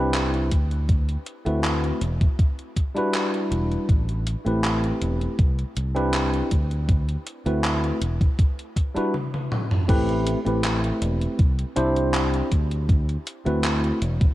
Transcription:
0.00 0.51 C2 medium
0.00 0.49 C4 medium
0.00 0.49 D4 medium
0.00 0.49 E4 medium
0.00 0.49 G4 medium
0.00 0.50 B4 loud
0.14 clap loud
0.14 closed hi-hat medium
0.34 closed hi-hat soft
0.51 1.16 D2 medium
0.51 kick medium
0.51 closed hi-hat medium
0.71 closed hi-hat soft
0.89 kick loud
0.89 closed hi-hat medium
1.09 closed hi-hat soft
1.26 closed hi-hat medium
1.45 1.91 D2 loud
1.45 1.99 A3 medium
1.45 1.99 C4 medium
1.45 1.99 E4 medium
1.45 1.99 F#4 medium
1.45 2.00 B4 medium
1.45 closed hi-hat soft
1.64 clap loud
1.64 closed hi-hat medium
1.84 closed hi-hat soft
2.01 2.25 E1 loud
2.01 closed hi-hat medium
2.21 kick loud
2.21 closed hi-hat soft
2.39 kick loud
2.39 closed hi-hat medium
2.59 closed hi-hat soft
2.76 kick medium
2.76 closed hi-hat medium
2.95 3.86 G3 medium
2.95 3.87 D4 medium
2.95 3.87 E4 medium
2.95 3.87 F#4 medium
2.95 3.88 B4 loud
2.95 closed hi-hat soft
3.14 clap loud
3.14 closed hi-hat medium
3.34 closed hi-hat soft
3.51 3.75 E1 medium
3.51 closed hi-hat medium
3.72 closed hi-hat soft
3.89 4.34 A1 medium
3.89 kick loud
3.89 closed hi-hat medium
4.09 closed hi-hat soft
4.27 closed hi-hat medium
4.45 4.91 A1 loud
4.45 5.36 A3 medium
4.45 5.37 C4 medium
4.45 5.37 E4 medium
4.45 5.37 G4 medium
4.45 5.38 B4 medium
4.45 closed hi-hat soft
4.64 clap loud
4.64 closed hi-hat medium
4.84 closed hi-hat soft
5.01 5.25 E1 loud
5.01 closed hi-hat medium
5.21 closed hi-hat soft
5.39 5.63 C2 medium
5.39 kick loud
5.39 closed hi-hat medium
5.59 closed hi-hat soft
5.77 6.41 C2 medium
5.77 closed hi-hat medium
5.95 6.49 C4 medium
5.95 6.49 D4 medium
5.95 6.49 E4 medium
5.95 6.49 G4 medium
5.95 6.50 B4 loud
5.95 closed hi-hat soft
6.14 clap loud
6.14 closed hi-hat medium
6.34 closed hi-hat soft
6.51 7.16 D2 loud
6.51 kick medium
6.51 closed hi-hat medium
6.71 closed hi-hat soft
6.89 kick loud
6.89 closed hi-hat medium
7.09 closed hi-hat soft
7.27 closed hi-hat loud
7.46 7.91 D2 loud
7.46 7.99 A3 medium
7.46 7.99 C4 medium
7.46 7.99 E4 medium
7.46 8.00 F#4 medium
7.46 8.00 B4 medium
7.46 closed hi-hat soft
7.64 clap loud
7.64 closed hi-hat medium
7.84 closed hi-hat soft
8.01 8.25 E1 loud
8.01 closed hi-hat loud
8.21 kick loud
8.21 closed hi-hat soft
8.39 kick loud
8.39 closed hi-hat medium
8.59 closed hi-hat soft
8.76 kick medium
8.76 closed hi-hat medium
8.95 9.13 G3 medium
8.95 9.14 D4 medium
8.95 9.14 E4 medium
8.95 9.14 F#4 medium
8.95 9.15 B4 loud
8.95 muted fingered electric bass stroke soft
8.95 closed hi-hat soft
9.14 high tom medium
9.34 high tom medium
9.52 mid tom medium
9.71 mid tom medium
9.88 10.34 A1 loud
9.88 10.38 A3 loud
9.88 10.38 C4 medium
9.88 10.38 E4 medium
9.88 10.38 G4 medium
9.88 10.39 B4 loud
9.88 kick loud
9.88 closed hi-hat medium
9.88 crash loud
10.09 closed hi-hat soft
10.27 closed hi-hat loud
10.45 10.91 A1 medium
10.45 11.36 A3 medium
10.45 11.37 C4 medium
10.45 11.37 E4 medium
10.45 11.37 G4 medium
10.45 11.38 B4 medium
10.45 closed hi-hat soft
10.64 clap loud
10.64 closed hi-hat medium
10.84 closed hi-hat soft
11.02 11.26 E1 loud
11.02 closed hi-hat loud
11.21 closed hi-hat soft
11.39 11.63 C2 medium
11.39 kick loud
11.39 closed hi-hat medium
11.59 closed hi-hat soft
11.76 12.41 C2 loud
11.76 12.49 C4 loud
11.76 12.49 D4 medium
11.76 12.49 E4 medium
11.76 12.49 G4 medium
11.76 12.50 C5 loud
11.76 closed hi-hat loud
11.96 closed hi-hat soft
12.14 clap loud
12.14 closed hi-hat medium
12.34 closed hi-hat soft
12.52 13.16 D2 loud
12.52 kick medium
12.52 closed hi-hat loud
12.71 closed hi-hat soft
12.89 kick loud
12.89 closed hi-hat medium
13.09 closed hi-hat soft
13.27 closed hi-hat loud
13.45 13.91 D2 loud
13.45 13.99 A3 medium
13.45 13.99 C4 medium
13.45 13.99 E4 medium
13.45 14.00 F#4 medium
13.45 14.00 B4 medium
13.45 closed hi-hat soft
13.64 clap loud
13.64 closed hi-hat medium
13.84 closed hi-hat soft
14.02 14.26 E1 loud
14.02 closed hi-hat loud
14.21 kick loud
14.21 closed hi-hat soft

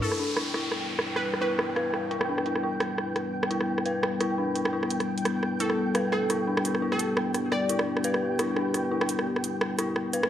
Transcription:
0.02 10.30 G3 medium
0.02 10.30 B3 medium
0.02 0.18 E4 medium
0.02 5.56 E4 medium
0.02 0.51 A4 medium
0.02 5.58 B4 medium
0.02 10.30 G5 medium
0.02 closed hi-hat medium
0.02 crash medium
0.02 downlifter medium
0.12 cross-stick soft
0.19 0.35 D4 medium
0.37 0.53 E4 medium
0.37 cross-stick medium
0.37 closed hi-hat medium
0.54 1.23 E4 medium
0.54 cross-stick soft
0.72 cross-stick soft
0.72 closed hi-hat medium
0.99 cross-stick medium
1.07 closed hi-hat medium
1.16 1.37 B4 medium
1.16 cross-stick soft
1.34 cross-stick soft
1.41 1.58 E4 medium
1.41 1.69 B4 medium
1.41 closed hi-hat medium
1.59 cross-stick medium
1.76 2.10 B4 medium
1.76 cross-stick soft
1.76 closed hi-hat medium
1.94 cross-stick soft
2.11 2.27 E4 medium
2.11 closed hi-hat medium
2.21 cross-stick medium
2.29 2.45 D4 medium
2.38 cross-stick soft
2.46 2.62 E4 medium
2.46 closed hi-hat medium
2.56 cross-stick soft
2.63 3.32 E4 medium
2.80 cross-stick medium
2.80 closed hi-hat medium
2.98 cross-stick soft
3.16 cross-stick soft
3.16 closed hi-hat medium
3.43 cross-stick medium
3.50 3.67 E4 medium
3.50 closed hi-hat medium
3.61 cross-stick soft
3.78 cross-stick soft
3.86 4.19 B4 medium
3.86 closed hi-hat medium
4.03 cross-stick medium
4.20 4.36 E4 medium
4.20 cross-stick soft
4.20 closed hi-hat medium
4.38 4.54 D4 medium
4.56 4.71 E4 medium
4.56 closed hi-hat medium
4.65 cross-stick medium
4.73 5.41 E4 medium
4.83 cross-stick soft
4.90 closed hi-hat medium
5.00 cross-stick soft
5.00 closed hi-hat soft
5.18 closed hi-hat soft
5.25 cross-stick medium
5.25 closed hi-hat medium
5.43 cross-stick soft
5.60 10.30 D4 medium
5.60 5.77 E4 medium
5.60 10.30 G4 medium
5.60 6.09 A4 medium
5.60 closed hi-hat medium
5.70 cross-stick soft
5.95 6.28 B4 medium
5.95 cross-stick medium
5.95 closed hi-hat medium
6.12 6.34 A4 medium
6.12 cross-stick soft
6.30 6.46 E4 medium
6.30 cross-stick soft
6.30 closed hi-hat medium
6.47 6.63 D4 medium
6.57 cross-stick medium
6.65 6.81 E4 medium
6.65 closed hi-hat medium
6.75 cross-stick soft
6.82 7.50 E4 medium
6.92 7.12 A4 medium
6.92 cross-stick soft
6.99 closed hi-hat medium
7.17 cross-stick medium
7.34 cross-stick soft
7.34 closed hi-hat medium
7.52 7.87 D5 medium
7.52 cross-stick soft
7.69 7.86 E4 medium
7.69 closed hi-hat medium
7.79 cross-stick medium
7.97 cross-stick soft
8.04 8.38 B4 medium
8.04 closed hi-hat medium
8.14 cross-stick soft
8.39 8.55 E4 medium
8.39 cross-stick medium
8.39 closed hi-hat medium
8.56 8.73 D4 medium
8.56 cross-stick soft
8.74 8.90 E4 medium
8.74 cross-stick soft
8.74 closed hi-hat medium
8.91 9.60 E4 medium
9.01 cross-stick medium
9.09 closed hi-hat medium
9.19 cross-stick soft
9.36 cross-stick soft
9.44 closed hi-hat medium
9.61 cross-stick medium
9.79 9.95 E4 medium
9.79 cross-stick medium
9.79 closed hi-hat medium
9.96 cross-stick medium
10.13 10.30 B4 medium
10.13 closed hi-hat medium
10.23 cross-stick medium

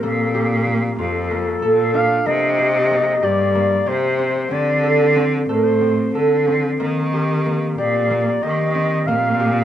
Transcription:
0.00 0.96 A#2 loud
0.00 0.66 A#3 medium
0.00 2.71 C4 medium
0.00 0.34 G4 medium
0.00 0.72 A4 medium
0.34 2.58 G4 medium
0.66 1.30 A#3 medium
0.99 1.59 F2 medium
0.99 3.51 F4 medium
0.99 1.97 A4 medium
1.31 1.68 A#3 medium
1.62 2.23 A#2 medium
1.62 2.32 A4 medium
1.94 4.74 D4 medium
1.94 2.28 F5 medium
2.26 3.20 C3 medium
2.26 2.90 A#3 medium
2.26 3.25 D#5 medium
2.58 3.22 G4 medium
2.91 3.55 A#3 medium
3.23 3.84 G2 medium
3.23 3.86 G4 medium
3.23 3.90 D5 medium
3.55 4.89 A#3 medium
3.86 4.48 C3 medium
3.86 6.22 G4 medium
3.86 4.55 C5 medium
4.19 4.51 C4 medium
4.51 5.45 D3 medium
4.51 5.15 C4 medium
4.51 5.23 D5 medium
4.83 5.49 A4 medium
5.16 5.81 C4 medium
5.49 6.11 A2 medium
5.49 6.14 A4 medium
5.49 5.57 C5 medium
5.55 5.65 A#4 medium
5.63 6.15 C5 medium
5.81 6.47 C4 medium
6.15 6.76 D3 medium
6.15 6.86 A4 medium
6.47 8.74 C4 medium
6.80 7.74 D#3 medium
6.80 7.45 A#3 medium
7.13 7.78 G4 medium
7.46 8.10 A#3 medium
7.78 8.40 A#2 medium
7.78 8.42 G4 medium
7.78 8.44 D5 medium
8.10 9.07 A#3 medium
8.43 9.05 D#3 medium
8.43 9.39 G4 medium
8.43 9.08 D#5 medium
8.75 9.64 C4 medium
9.07 9.64 A#2 loud
9.07 9.64 A#3 medium
9.07 9.64 F5 medium
9.40 9.64 G4 medium

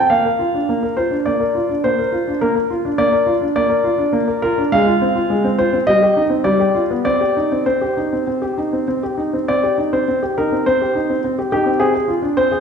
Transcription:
0.00 0.10 C4 soft
0.00 0.10 G5 medium
0.10 0.25 A#3 soft
0.10 0.94 F5 medium
0.25 0.41 A#4 soft
0.39 0.55 F4 soft
0.54 0.70 D4 soft
0.69 0.83 A#3 soft
0.83 0.98 A#4 soft
0.97 1.13 F4 soft
0.97 1.14 C5 medium
1.11 1.27 D4 soft
1.26 1.41 A#3 soft
1.26 1.84 D5 medium
1.40 1.56 A#4 soft
1.55 1.70 F4 soft
1.69 1.85 D4 soft
1.84 1.98 A#3 soft
1.84 2.38 C5 medium
1.99 2.14 A#4 soft
2.12 2.28 F4 soft
2.28 2.42 D4 soft
2.41 2.56 A#3 soft
2.41 2.54 A#4 medium
2.55 2.71 A#4 soft
2.70 2.86 F4 soft
2.85 3.00 D4 soft
2.98 3.13 A#3 soft
2.98 3.33 D5 medium
3.12 3.28 A#4 soft
3.26 3.42 F4 soft
3.41 3.57 D4 soft
3.56 3.70 A#3 soft
3.56 4.39 D5 medium
3.70 3.85 A#4 soft
3.84 4.00 F4 soft
3.98 4.14 D4 soft
4.13 4.28 A#3 medium
4.28 4.41 A#4 soft
4.42 4.59 F4 soft
4.42 4.61 A#4 medium
4.58 4.73 D4 soft
4.72 4.87 G#3 medium
4.72 5.55 F5 medium
4.86 5.02 F4 soft
5.01 5.17 C4 soft
5.15 5.31 F4 soft
5.30 5.44 G#3 medium
5.44 5.60 C4 soft
5.58 5.74 F4 soft
5.58 5.76 C5 medium
5.73 5.88 C4 soft
5.87 6.02 G3 medium
5.87 6.22 D#5 medium
6.02 6.17 G4 soft
6.16 6.32 D#4 soft
6.30 6.45 C4 soft
6.44 6.59 G3 medium
6.44 6.81 D5 medium
6.59 6.76 G4 soft
6.75 6.91 F4 soft
6.91 7.05 B3 soft
7.05 7.20 C4 soft
7.05 7.62 D5 medium
7.21 7.36 G4 soft
7.37 7.52 D#4 soft
7.52 7.65 C4 soft
7.66 7.81 C4 soft
7.66 8.87 C5 medium
7.81 7.97 G4 soft
7.97 8.13 D#4 soft
8.13 8.26 C4 soft
8.27 8.42 C4 soft
8.42 8.58 G4 soft
8.58 8.73 D#4 soft
8.73 8.86 C4 soft
8.88 9.02 C4 soft
9.03 9.19 G4 soft
9.18 9.34 D#4 soft
9.33 9.47 C4 soft
9.48 9.63 C4 soft
9.48 9.75 D5 medium
9.63 9.79 G4 soft
9.78 9.93 D#4 soft
9.93 10.07 C4 soft
9.93 10.19 C5 medium
10.08 10.22 C4 soft
10.23 10.38 G4 soft
10.38 10.53 D#4 soft
10.38 10.64 A#4 medium
10.52 10.65 C4 soft
10.66 10.80 C4 soft
10.66 11.18 C5 medium
10.82 10.96 G4 soft
10.95 11.10 D#4 soft
11.10 11.23 C4 soft
11.24 11.38 C4 soft
11.38 11.51 G4 soft
11.52 11.67 D#4 soft
11.52 11.81 G4 medium
11.66 11.78 C4 soft
11.80 11.94 C4 soft
11.80 11.93 G#4 medium
12.08 12.24 F4 soft
12.22 12.38 D4 soft
12.37 12.52 C4 soft
12.37 12.60 C5 medium
12.52 12.60 G#4 soft

